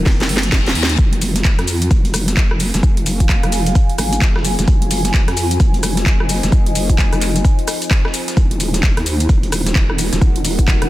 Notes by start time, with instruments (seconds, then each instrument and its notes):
Already playing: ambient pad D#4 A#4 F#5
0.06 wobble bass D#1, kick, snare, reverse cymbal
0.20 snare, closed hi-hat
0.29 wobble bass F#1, open hi-hat
0.37 snare
0.43 closed hi-hat
0.52 wobble bass D#1, kick, snare, clap
0.66 snare, closed hi-hat
0.75 wobble bass D#2, open hi-hat
0.83 snare
0.90 closed hi-hat
0.98 wobble bass F1, ambient pad F4, kick, closed hi-hat, shaker
1.13 closed hi-hat
1.21 closed hi-hat, open hi-hat, shaker
1.27 ambient pad C5
1.36 snare, closed hi-hat, shaker
1.45 wobble bass F1, kick, snare, clap, closed hi-hat, shaker
1.59 wobble bass F2, cross-stick, snare, closed hi-hat
1.68 closed hi-hat, open hi-hat, shaker
1.82 closed hi-hat, shaker
1.88 wobble bass F1, ambient pad G#5, kick, closed hi-hat, shaker
2.05 closed hi-hat
2.14 wobble bass F1, cross-stick, closed hi-hat, open hi-hat, shaker
2.24 ambient pad F5, snare, closed hi-hat
2.28 shaker
2.37 wobble bass F1, kick, snare, clap, closed hi-hat, shaker
2.51 cross-stick
2.60 closed hi-hat, open hi-hat, shaker
2.74 wobble bass F1, snare, closed hi-hat, shaker
2.83 wobble bass F1, kick, closed hi-hat, shaker
2.97 closed hi-hat
3.06 wobble bass F1, closed hi-hat, open hi-hat, shaker
3.20 kick, closed hi-hat, shaker
3.29 kick, snare, clap, closed hi-hat, shaker
3.43 wobble bass F1, cross-stick, closed hi-hat
3.52 closed hi-hat, open hi-hat, shaker
3.66 closed hi-hat, shaker
3.75 kick, closed hi-hat, shaker
3.90 closed hi-hat
3.98 wobble bass G#1, cross-stick, closed hi-hat, open hi-hat, shaker
4.13 closed hi-hat, shaker
4.21 wobble bass F1, kick, snare, clap, closed hi-hat, shaker
4.36 cross-stick, snare
4.45 closed hi-hat, open hi-hat, shaker
4.59 wobble bass F1, snare, closed hi-hat, shaker
4.68 wobble bass F1, kick, closed hi-hat, shaker
4.82 closed hi-hat
4.91 closed hi-hat, open hi-hat, shaker
5.05 snare, closed hi-hat, shaker
5.14 wobble bass F1, kick, snare, clap, closed hi-hat, shaker
5.25 wobble bass F2, ambient pad D#5, cross-stick, snare, closed hi-hat
5.37 closed hi-hat, open hi-hat, shaker
5.51 closed hi-hat, shaker
5.60 wobble bass F1, kick, closed hi-hat, shaker
5.74 closed hi-hat
5.83 wobble bass F1, cross-stick, closed hi-hat, open hi-hat, shaker
5.97 snare, closed hi-hat, shaker
6.06 wobble bass F1, kick, snare, clap, closed hi-hat, shaker
6.20 cross-stick
6.29 closed hi-hat, open hi-hat, shaker
6.43 wobble bass F1, snare, closed hi-hat, shaker
6.52 wobble bass F1, kick, closed hi-hat, shaker
6.66 closed hi-hat
6.75 wobble bass F1, closed hi-hat, open hi-hat, shaker
6.90 kick, closed hi-hat, shaker
6.98 kick, snare, clap, closed hi-hat, shaker
7.13 wobble bass F1, cross-stick, closed hi-hat, shaker
7.22 clap, closed hi-hat, open hi-hat, shaker
7.36 closed hi-hat, shaker
7.45 kick, closed hi-hat, shaker
7.59 closed hi-hat
7.68 cross-stick, closed hi-hat, open hi-hat, shaker
7.82 closed hi-hat, shaker
7.91 kick, snare, clap, closed hi-hat, shaker
8.05 cross-stick, snare
8.14 closed hi-hat, open hi-hat, shaker
8.28 snare, closed hi-hat, shaker
8.37 wobble bass D#1, ambient pad D#4, kick, closed hi-hat, shaker
8.51 closed hi-hat
8.60 closed hi-hat, open hi-hat, shaker
8.74 ambient pad A#4, snare, closed hi-hat, shaker
8.83 wobble bass D#1, kick, snare, clap, closed hi-hat, shaker
8.97 wobble bass D#2, cross-stick, snare, closed hi-hat
9.06 closed hi-hat, open hi-hat, shaker
9.20 closed hi-hat, shaker
9.29 wobble bass D#1, kick, closed hi-hat, shaker
9.36 ambient pad F#5
9.43 closed hi-hat
9.52 wobble bass D#1, cross-stick, closed hi-hat, open hi-hat, shaker
9.66 snare, closed hi-hat, shaker
9.75 wobble bass D#1, kick, snare, clap, closed hi-hat, shaker
9.90 cross-stick
9.98 closed hi-hat, open hi-hat, shaker
10.13 wobble bass D#1, snare, closed hi-hat, shaker
10.21 wobble bass D#1, kick, closed hi-hat, shaker
10.36 closed hi-hat
10.45 wobble bass D#1, closed hi-hat, open hi-hat, shaker
10.59 kick, closed hi-hat, shaker
10.68 kick, snare, clap, closed hi-hat, shaker
10.82 wobble bass D#1, cross-stick, closed hi-hat